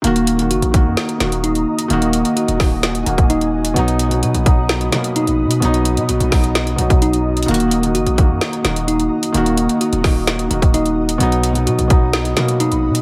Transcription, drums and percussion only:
0.04 closed hi-hat
0.16 closed hi-hat
0.27 closed hi-hat
0.39 closed hi-hat
0.51 closed hi-hat
0.62 closed hi-hat
0.74 kick, closed hi-hat
0.97 snare, closed hi-hat
1.09 closed hi-hat
1.20 snare, closed hi-hat
1.32 closed hi-hat
1.44 closed hi-hat
1.55 closed hi-hat
1.79 closed hi-hat
1.90 closed hi-hat
2.02 closed hi-hat
2.13 closed hi-hat
2.25 closed hi-hat
2.37 closed hi-hat
2.48 closed hi-hat
2.60 kick, snare, open hi-hat
2.83 snare, closed hi-hat
2.95 closed hi-hat
3.06 closed hi-hat
3.18 kick, closed hi-hat
3.30 closed hi-hat
3.41 closed hi-hat
3.65 closed hi-hat
3.76 closed hi-hat
3.88 closed hi-hat
3.99 closed hi-hat
4.11 closed hi-hat
4.23 closed hi-hat
4.34 closed hi-hat
4.46 kick, closed hi-hat
4.69 snare, closed hi-hat
4.81 closed hi-hat
4.92 snare, closed hi-hat
5.04 closed hi-hat
5.16 closed hi-hat
5.27 closed hi-hat
5.51 closed hi-hat
5.62 closed hi-hat
5.74 closed hi-hat
5.85 closed hi-hat
5.97 closed hi-hat
6.09 closed hi-hat
6.20 closed hi-hat
6.32 kick, snare, closed hi-hat, open hi-hat
6.44 closed hi-hat
6.55 snare, closed hi-hat
6.67 closed hi-hat
6.78 closed hi-hat
6.90 kick, closed hi-hat
7.02 closed hi-hat
7.13 closed hi-hat
7.37 closed hi-hat
7.43 closed hi-hat
7.48 closed hi-hat
7.54 closed hi-hat
7.60 closed hi-hat
7.71 closed hi-hat
7.83 closed hi-hat
7.95 closed hi-hat
8.07 closed hi-hat
8.18 kick, closed hi-hat
8.41 snare, closed hi-hat
8.53 closed hi-hat
8.65 snare, closed hi-hat
8.76 closed hi-hat
8.88 closed hi-hat
9.00 closed hi-hat
9.23 closed hi-hat
9.34 closed hi-hat
9.46 closed hi-hat
9.57 closed hi-hat
9.69 closed hi-hat
9.81 closed hi-hat
9.93 closed hi-hat
10.04 kick, snare, open hi-hat
10.27 snare, closed hi-hat
10.39 closed hi-hat
10.51 closed hi-hat
10.62 kick, closed hi-hat
10.74 closed hi-hat
10.86 closed hi-hat
11.09 closed hi-hat
11.20 closed hi-hat
11.32 closed hi-hat
11.43 closed hi-hat
11.55 closed hi-hat
11.67 closed hi-hat
11.79 closed hi-hat
11.90 kick, closed hi-hat
12.13 snare, closed hi-hat
12.25 closed hi-hat
12.37 snare, closed hi-hat
12.48 closed hi-hat
12.60 closed hi-hat
12.72 closed hi-hat
12.95 closed hi-hat

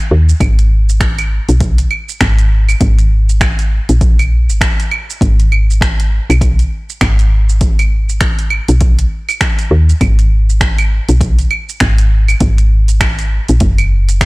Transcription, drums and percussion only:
0.29 shaker
0.40 kick, closed hi-hat, claves, shaker
0.59 closed hi-hat, shaker
0.89 shaker
1.01 finger snap, kick, closed hi-hat, shaker
1.18 closed hi-hat, claves, shaker
1.49 closed hi-hat, shaker
1.60 kick, closed hi-hat, shaker
1.78 closed hi-hat, shaker
1.91 claves
2.09 shaker
2.21 finger snap, kick, closed hi-hat, shaker
2.39 closed hi-hat, shaker
2.69 claves, shaker
2.81 kick, closed hi-hat, shaker
2.99 closed hi-hat, shaker
3.29 shaker
3.41 finger snap, kick, closed hi-hat, claves, shaker
3.59 closed hi-hat, shaker
3.89 closed hi-hat, shaker
4.01 kick, closed hi-hat, shaker
4.19 closed hi-hat, claves, shaker
4.50 shaker
4.61 finger snap, kick, closed hi-hat, shaker
4.80 closed hi-hat, shaker
4.91 claves
5.10 shaker
5.21 kick, closed hi-hat, shaker
5.40 closed hi-hat, shaker
5.52 claves
5.71 shaker
5.81 finger snap, kick, closed hi-hat, shaker
6.00 closed hi-hat, shaker
6.30 closed hi-hat, claves, shaker
6.41 kick, closed hi-hat, shaker
6.59 closed hi-hat, shaker
6.90 shaker
7.01 finger snap, kick, closed hi-hat, claves, shaker
7.19 closed hi-hat, shaker
7.49 shaker
7.61 kick, closed hi-hat, shaker
7.79 closed hi-hat, claves, shaker
8.09 shaker
8.21 finger snap, kick, closed hi-hat, shaker
8.39 closed hi-hat, shaker
8.50 claves
8.68 closed hi-hat, shaker
8.81 kick, closed hi-hat, shaker
8.99 closed hi-hat, shaker
9.29 claves, shaker
9.41 finger snap, kick, closed hi-hat, shaker
9.59 closed hi-hat, shaker
9.89 shaker
10.01 kick, closed hi-hat, claves, shaker
10.19 closed hi-hat, shaker
10.50 shaker
10.61 finger snap, kick, closed hi-hat, shaker
10.78 closed hi-hat, claves, shaker
11.09 closed hi-hat, shaker
11.21 kick, closed hi-hat, shaker
11.39 closed hi-hat, shaker
11.51 claves
11.69 shaker
11.80 finger snap, kick, closed hi-hat, shaker
11.98 closed hi-hat, shaker
12.28 claves, shaker
12.40 kick, closed hi-hat, shaker
12.58 closed hi-hat, shaker
12.88 closed hi-hat, shaker
13.01 finger snap, kick, closed hi-hat, claves, shaker
13.19 closed hi-hat, shaker
13.48 closed hi-hat, shaker
13.60 kick, closed hi-hat, shaker
13.78 closed hi-hat, claves, shaker
14.09 closed hi-hat, shaker
14.21 finger snap, kick, closed hi-hat, shaker

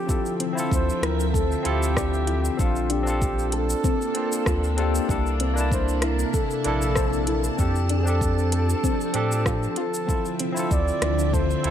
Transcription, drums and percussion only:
0.09 kick, shaker
0.26 shaker
0.40 closed hi-hat
0.58 shaker
0.72 kick, shaker
0.89 shaker
1.03 cross-stick, closed hi-hat
1.20 shaker
1.34 kick, shaker
1.52 shaker
1.65 closed hi-hat
1.83 shaker
1.97 kick, cross-stick, shaker
2.14 shaker
2.27 closed hi-hat
2.45 shaker
2.59 kick, shaker
2.76 shaker
2.90 closed hi-hat
3.07 shaker
3.22 kick, shaker
3.39 shaker
3.52 closed hi-hat
3.70 shaker
3.84 kick, shaker
4.02 shaker
4.15 closed hi-hat
4.32 shaker
4.46 kick, cross-stick, shaker
4.64 shaker
4.78 closed hi-hat
4.95 shaker
5.09 kick, shaker
5.26 shaker
5.40 closed hi-hat
5.57 shaker
5.72 kick, shaker
5.88 shaker
6.02 cross-stick, closed hi-hat
6.19 shaker
6.34 kick, shaker
6.51 shaker
6.64 closed hi-hat
6.82 shaker
6.95 kick, cross-stick, shaker
7.13 shaker
7.27 closed hi-hat
7.44 shaker
7.59 kick, shaker
7.76 shaker
7.89 closed hi-hat
8.07 shaker
8.21 kick, shaker
8.38 shaker
8.52 closed hi-hat
8.69 shaker
8.84 kick, shaker
9.01 shaker
9.14 closed hi-hat
9.32 shaker
9.46 kick, cross-stick, shaker
9.63 shaker
9.76 closed hi-hat
9.94 shaker
10.09 kick, shaker
10.25 shaker
10.39 closed hi-hat
10.57 shaker
10.71 kick, shaker
10.88 shaker
11.02 cross-stick, closed hi-hat
11.19 shaker
11.34 kick, shaker
11.50 shaker
11.64 closed hi-hat

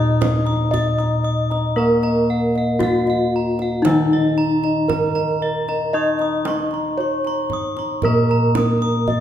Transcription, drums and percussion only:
0.22 kendang high, kendang low
0.46 kendang slap
0.74 kendang low
1.00 kendang slap
1.51 kendang slap
2.03 kendang slap
2.55 kendang slap
2.80 kendang high, kendang low
3.07 kendang slap
3.59 kendang slap
3.85 kendang high, kendang low
4.63 kendang slap
4.89 kendang high, kendang low
5.16 kendang slap
5.68 kendang slap
6.19 kendang slap
6.45 kendang high
6.71 kendang slap
7.25 kendang slap
7.50 kendang low
7.77 kendang slap
8.02 kendang low
8.55 kendang high, kendang low
8.82 kendang slap
9.08 kendang low

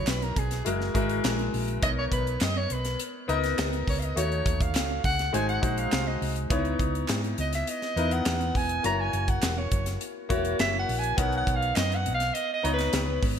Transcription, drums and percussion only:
0.07 snare, clap, closed hi-hat
0.22 closed hi-hat
0.36 kick, closed hi-hat
0.51 snare, closed hi-hat
0.66 closed hi-hat
0.81 snare
0.95 kick, closed hi-hat
1.09 closed hi-hat
1.24 snare, clap, closed hi-hat
1.39 closed hi-hat
1.54 open hi-hat
1.68 closed hi-hat
1.82 kick, closed hi-hat
2.12 kick, closed hi-hat
2.27 closed hi-hat
2.41 snare, clap, closed hi-hat
2.70 closed hi-hat
2.85 snare, closed hi-hat
2.99 closed hi-hat
3.29 closed hi-hat
3.44 snare, closed hi-hat
3.58 snare, clap, closed hi-hat
3.73 closed hi-hat
3.88 kick, open hi-hat
4.02 closed hi-hat
4.17 closed hi-hat
4.32 closed hi-hat
4.46 kick, closed hi-hat
4.61 kick, closed hi-hat
4.75 snare, clap, closed hi-hat
5.04 kick, open hi-hat
5.19 snare, closed hi-hat
5.34 closed hi-hat
5.49 closed hi-hat
5.63 kick, closed hi-hat
5.78 closed hi-hat
5.92 snare, clap, closed hi-hat
6.22 open hi-hat
6.36 closed hi-hat
6.50 kick, closed hi-hat
6.65 closed hi-hat
6.79 kick, closed hi-hat
6.95 closed hi-hat
7.08 snare, clap, closed hi-hat
7.24 closed hi-hat
7.38 closed hi-hat
7.53 snare, closed hi-hat
7.67 closed hi-hat
7.82 snare, closed hi-hat
7.97 closed hi-hat
8.11 closed hi-hat
8.25 snare, clap, closed hi-hat
8.41 closed hi-hat
8.55 kick, open hi-hat
8.69 closed hi-hat
8.84 closed hi-hat
9.13 closed hi-hat
9.28 kick, closed hi-hat
9.42 snare, clap, closed hi-hat
9.71 kick, closed hi-hat
9.86 snare, closed hi-hat
10.01 closed hi-hat
10.30 kick, closed hi-hat
10.45 closed hi-hat
10.59 snare, clap, closed hi-hat
10.89 open hi-hat
11.03 closed hi-hat
11.18 kick, closed hi-hat
11.32 closed hi-hat
11.47 kick, closed hi-hat
11.62 closed hi-hat
11.76 snare, clap, closed hi-hat
11.92 closed hi-hat
12.06 closed hi-hat
12.20 snare, closed hi-hat
12.35 closed hi-hat
12.65 closed hi-hat
12.79 snare, closed hi-hat
12.93 snare, clap, closed hi-hat
13.23 kick, open hi-hat

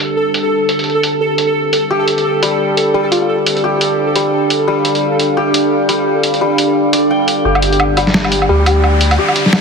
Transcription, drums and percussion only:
0.34 closed hi-hat
0.69 closed hi-hat
0.79 closed hi-hat
0.84 closed hi-hat
0.90 closed hi-hat
1.03 closed hi-hat
1.38 closed hi-hat
1.73 closed hi-hat
2.08 closed hi-hat
2.18 closed hi-hat
2.43 closed hi-hat
2.77 closed hi-hat
3.12 closed hi-hat
3.46 closed hi-hat
3.57 closed hi-hat
3.81 closed hi-hat
4.16 closed hi-hat
4.50 closed hi-hat
4.85 closed hi-hat
4.95 closed hi-hat
5.20 closed hi-hat
5.54 closed hi-hat
5.89 closed hi-hat
6.23 closed hi-hat
6.34 closed hi-hat
6.58 closed hi-hat
6.93 closed hi-hat
7.28 closed hi-hat
7.55 low woodblock
7.62 closed hi-hat
7.73 closed hi-hat
7.80 low woodblock
7.97 closed hi-hat, low woodblock
8.07 snare
8.14 snare
8.24 low woodblock
8.32 closed hi-hat
8.42 low woodblock
8.66 closed hi-hat, low woodblock
8.84 low woodblock
9.01 closed hi-hat
9.11 closed hi-hat, low woodblock
9.28 low woodblock
9.36 closed hi-hat
9.46 snare
9.53 snare, low woodblock

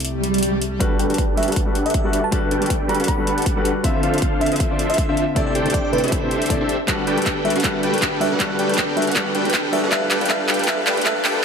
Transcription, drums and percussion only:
0.00 closed hi-hat
0.05 closed hi-hat
0.24 closed hi-hat
0.34 closed hi-hat
0.38 closed hi-hat
0.43 closed hi-hat
0.62 closed hi-hat
0.80 kick, closed hi-hat
0.99 closed hi-hat
1.10 closed hi-hat
1.14 closed hi-hat
1.18 kick, closed hi-hat
1.37 closed hi-hat
1.43 closed hi-hat
1.48 closed hi-hat
1.52 closed hi-hat
1.56 kick, closed hi-hat
1.75 closed hi-hat
1.86 closed hi-hat
1.90 closed hi-hat
1.94 kick, closed hi-hat
2.13 closed hi-hat
2.32 kick, closed hi-hat
2.51 closed hi-hat
2.62 closed hi-hat
2.66 closed hi-hat
2.70 kick, closed hi-hat
2.89 closed hi-hat
2.95 closed hi-hat
3.00 closed hi-hat
3.04 closed hi-hat
3.08 kick, closed hi-hat
3.27 closed hi-hat
3.38 closed hi-hat
3.42 closed hi-hat
3.46 kick, closed hi-hat
3.65 closed hi-hat
3.84 kick, closed hi-hat
4.03 closed hi-hat
4.14 closed hi-hat
4.18 closed hi-hat
4.22 kick, closed hi-hat
4.41 closed hi-hat
4.46 closed hi-hat
4.52 closed hi-hat
4.56 closed hi-hat
4.60 kick, closed hi-hat
4.79 closed hi-hat
4.90 closed hi-hat
4.94 closed hi-hat
4.98 kick, closed hi-hat
5.17 closed hi-hat
5.36 kick, closed hi-hat
5.55 closed hi-hat
5.66 closed hi-hat
5.70 closed hi-hat
5.74 kick, closed hi-hat
5.93 closed hi-hat
5.98 closed hi-hat
6.04 closed hi-hat
6.08 closed hi-hat
6.12 kick, closed hi-hat
6.31 closed hi-hat
6.42 closed hi-hat
6.46 closed hi-hat
6.50 kick, closed hi-hat
6.69 closed hi-hat
6.88 kick, clap, closed hi-hat
7.07 closed hi-hat
7.18 closed hi-hat
7.22 closed hi-hat
7.26 kick, clap, closed hi-hat
7.45 closed hi-hat
7.50 closed hi-hat
7.56 closed hi-hat
7.60 closed hi-hat
7.64 kick, clap, closed hi-hat
7.83 closed hi-hat
7.94 closed hi-hat
7.98 closed hi-hat
8.02 kick, clap, closed hi-hat
8.21 open hi-hat
8.40 kick, clap, closed hi-hat
8.59 closed hi-hat
8.69 closed hi-hat
8.74 closed hi-hat
8.78 kick, clap, closed hi-hat
8.97 closed hi-hat
9.02 closed hi-hat
9.07 closed hi-hat
9.12 closed hi-hat
9.16 kick, clap, closed hi-hat
9.35 closed hi-hat
9.45 closed hi-hat
9.50 closed hi-hat
9.54 kick, clap, closed hi-hat
9.73 open hi-hat
9.92 kick, clap, closed hi-hat
10.11 clap, closed hi-hat
10.21 closed hi-hat
10.26 closed hi-hat
10.30 kick, clap, closed hi-hat
10.49 clap, closed hi-hat
10.54 closed hi-hat
10.59 closed hi-hat
10.64 closed hi-hat
10.68 kick, clap, closed hi-hat
10.87 clap, closed hi-hat
10.97 closed hi-hat
11.02 closed hi-hat
11.06 kick, clap, closed hi-hat
11.25 clap, open hi-hat

